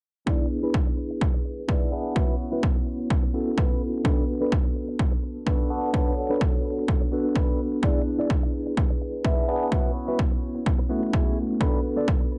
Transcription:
0.26 1.66 B3 medium
0.26 1.66 D4 medium
0.26 0.45 E4 loud
0.26 1.66 E4 medium
0.26 0.45 G#4 medium
0.26 1.66 G#4 medium
0.26 1.66 B4 medium
0.26 0.45 D5 loud
0.26 kick loud
0.63 0.74 E4 medium
0.63 0.74 G#4 medium
0.63 0.74 B4 medium
0.74 kick loud
0.86 muted clean electric guitar stroke medium
0.97 muted clean electric guitar stroke soft
1.10 muted clean electric guitar stroke soft
1.21 kick loud
1.33 muted clean electric guitar stroke loud
1.45 muted clean electric guitar stroke soft
1.68 1.89 B3 medium
1.68 1.89 D4 medium
1.68 1.92 E4 medium
1.68 1.90 E4 medium
1.68 1.92 G#4 medium
1.68 1.90 G#4 medium
1.68 1.90 B4 loud
1.68 1.92 D5 medium
1.68 kick loud
1.92 2.13 B3 medium
1.92 2.13 D4 medium
1.92 2.13 E4 medium
1.92 2.13 G#4 medium
1.92 2.13 B4 medium
2.16 2.34 E4 loud
2.16 2.34 F#4 medium
2.16 2.34 B4 loud
2.16 kick loud
2.52 2.63 E4 medium
2.52 2.63 F#4 medium
2.52 2.63 B4 medium
2.63 kick loud
2.75 muted clean electric guitar stroke medium
2.86 muted clean electric guitar stroke soft
2.99 muted clean electric guitar stroke soft
3.10 kick loud
3.23 muted clean electric guitar stroke loud
3.33 4.02 B3 medium
3.33 4.02 C#4 medium
3.33 4.02 E4 medium
3.33 4.02 F#4 medium
3.33 4.03 A4 medium
3.33 muted clean electric guitar stroke soft
3.57 3.81 E4 medium
3.57 3.81 F#4 medium
3.57 3.81 B4 medium
3.57 kick loud
4.04 5.44 B3 medium
4.04 4.23 D4 loud
4.04 5.44 D4 medium
4.04 5.44 F#4 medium
4.04 4.23 A4 medium
4.04 4.23 B4 loud
4.04 kick loud
4.41 4.52 D4 medium
4.41 4.52 A4 medium
4.41 4.52 B4 medium
4.52 kick loud
4.64 muted clean electric guitar stroke medium
4.75 muted clean electric guitar stroke soft
4.88 muted clean electric guitar stroke soft
4.99 kick loud
5.11 muted clean electric guitar stroke loud
5.23 muted clean electric guitar stroke soft
5.46 5.67 B3 medium
5.46 5.70 D4 medium
5.46 5.67 D4 medium
5.46 5.68 F#4 medium
5.46 5.70 A4 medium
5.46 5.68 A4 medium
5.46 5.68 B4 medium
5.46 5.70 B4 medium
5.46 kick loud
5.70 5.91 B3 medium
5.70 5.91 D4 medium
5.70 5.91 F#4 medium
5.70 5.91 A4 medium
5.70 5.91 B4 loud
5.93 6.12 D4 loud
5.93 6.12 A4 medium
5.93 6.12 B4 loud
5.93 kick loud
6.30 6.41 D4 medium
6.30 6.41 A4 medium
6.30 6.41 B4 medium
6.41 kick loud
6.53 muted clean electric guitar stroke medium
6.64 muted clean electric guitar stroke soft
6.77 muted clean electric guitar stroke soft
6.88 kick loud
7.01 muted clean electric guitar stroke loud
7.11 7.80 B3 medium
7.11 7.80 D4 medium
7.11 7.80 F#4 medium
7.11 7.80 A4 medium
7.11 7.81 B4 medium
7.11 muted clean electric guitar stroke soft
7.35 7.59 D4 medium
7.35 7.59 A4 medium
7.35 7.59 B4 medium
7.35 kick loud
7.82 9.22 B3 medium
7.82 9.22 D4 medium
7.82 8.01 E4 loud
7.82 8.01 G#4 medium
7.82 9.22 G#4 medium
7.82 9.22 B4 medium
7.82 8.01 D5 loud
7.82 kick loud
8.19 8.30 E4 medium
8.19 8.30 G#4 medium
8.19 8.30 D5 medium
8.30 kick loud
8.42 muted clean electric guitar stroke medium
8.53 muted clean electric guitar stroke soft
8.66 muted clean electric guitar stroke soft
8.77 kick loud
8.90 muted clean electric guitar stroke loud
9.01 muted clean electric guitar stroke soft
9.24 9.45 B3 medium
9.24 9.46 D4 medium
9.24 9.48 E4 medium
9.24 9.46 E4 medium
9.24 9.48 G#4 medium
9.24 9.46 G#4 medium
9.24 9.46 B4 loud
9.24 9.48 E5 medium
9.24 kick loud
9.48 9.69 B3 medium
9.48 9.69 D4 medium
9.48 9.69 E4 medium
9.48 9.69 G#4 medium
9.48 9.69 B4 loud
9.71 9.90 E4 loud
9.71 9.90 F#4 medium
9.71 9.90 B4 loud
9.71 kick loud
10.08 10.19 E4 medium
10.08 10.19 F#4 medium
10.08 10.19 B4 medium
10.19 kick loud
10.31 muted clean electric guitar stroke medium
10.42 muted clean electric guitar stroke soft
10.55 muted clean electric guitar stroke soft
10.66 kick loud
10.78 muted clean electric guitar stroke loud
10.89 11.59 A3 medium
10.89 11.58 B3 medium
10.89 11.58 C#4 medium
10.89 11.58 E4 medium
10.89 11.58 F#4 medium
10.89 muted clean electric guitar stroke soft
11.13 11.37 E4 medium
11.13 11.37 F#4 medium
11.13 11.37 G#4 medium
11.13 kick loud
11.60 12.38 B3 medium
11.60 11.79 D4 loud
11.60 12.38 D4 medium
11.60 12.38 F#4 medium
11.60 11.79 A4 loud
11.60 12.38 A4 medium
11.60 11.79 B4 loud
11.60 12.38 B4 medium
11.60 kick loud
11.97 12.08 D4 medium
11.97 12.08 A4 medium
11.97 12.08 D5 medium
12.08 kick loud
12.20 muted clean electric guitar stroke medium
12.31 muted clean electric guitar stroke soft

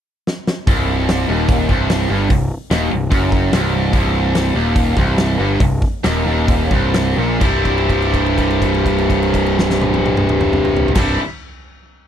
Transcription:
0.27 snare medium
0.47 snare medium
0.67 1.24 C1 medium
0.67 1.28 C2 loud
0.67 kick loud
0.67 open hi-hat medium
1.08 snare loud
1.08 open hi-hat medium
1.28 1.66 D#1 medium
1.28 1.68 D#2 medium
1.49 kick loud
1.49 open hi-hat medium
1.69 2.07 C1 loud
1.69 2.09 C2 loud
1.69 kick medium
1.89 snare loud
1.89 open hi-hat medium
2.09 2.29 G1 medium
2.09 2.29 G2 loud
2.30 2.49 C1 medium
2.30 2.46 C2 medium
2.30 kick loud
2.30 open hi-hat medium
2.71 2.90 D#1 medium
2.71 2.91 D#2 medium
2.71 snare loud
2.71 open hi-hat medium
2.91 3.11 C1 medium
2.91 3.07 C2 medium
3.11 3.50 F#1 medium
3.11 3.51 F#2 loud
3.11 kick loud
3.11 open hi-hat medium
3.32 kick medium
3.52 3.90 C1 medium
3.52 3.92 C2 loud
3.52 snare loud
3.52 open hi-hat medium
3.93 4.51 C1 medium
3.93 4.54 C2 loud
3.93 kick loud
3.93 open hi-hat medium
4.35 snare loud
4.35 open hi-hat medium
4.55 4.94 D#1 medium
4.55 4.96 D#2 loud
4.76 kick loud
4.76 open hi-hat medium
4.97 5.36 C1 loud
4.97 5.39 C2 loud
4.97 kick medium
5.18 snare loud
5.18 open hi-hat medium
5.39 5.59 G1 medium
5.39 5.60 G2 loud
5.60 5.80 C1 medium
5.60 5.78 C2 medium
5.60 kick loud
5.60 open hi-hat medium
5.82 kick medium
6.04 6.25 D#1 medium
6.04 6.25 D#2 loud
6.04 snare loud
6.04 open hi-hat medium
6.26 6.68 D#1 medium
6.26 6.70 D#2 loud
6.48 kick loud
6.48 open hi-hat medium
6.71 7.14 C1 medium
6.71 7.17 C2 medium
6.71 kick medium
6.94 snare loud
6.94 open hi-hat medium
7.18 7.40 A#1 medium
7.18 7.39 A#2 loud
7.40 10.86 C1 medium
7.40 10.90 C2 loud
7.40 10.91 G2 loud
7.40 10.92 C3 loud
7.40 10.93 G3 loud
7.40 kick loud
7.40 crash medium
7.44 10.94 E4 loud
7.65 kick medium
7.65 crash soft
7.78 crash soft
7.89 kick medium
7.89 crash soft
8.02 crash soft
8.14 kick medium
8.14 crash soft
8.26 crash soft
8.38 kick medium
8.38 crash soft
8.50 crash soft
8.62 kick medium
8.62 crash soft
8.74 crash soft
8.86 kick medium
8.86 crash soft
8.98 crash soft
9.10 kick medium
9.10 crash soft
9.23 crash medium
9.34 kick medium
9.34 crash medium
9.46 crash medium
9.59 snare medium
9.70 snare medium
9.81 high tom medium
9.94 high tom medium
10.06 high tom loud
10.17 mid tom loud
10.29 mid tom medium
10.41 mid tom loud
10.53 mid tom loud
10.65 mid tom medium
10.77 floor tom loud
10.88 floor tom loud
10.95 11.16 C1 medium
10.95 11.17 C2 loud
10.95 11.17 G2 loud
10.95 11.18 C3 loud
10.95 11.19 G3 loud
10.95 11.19 E4 loud
10.95 kick loud
10.95 snare medium
10.95 crash loud

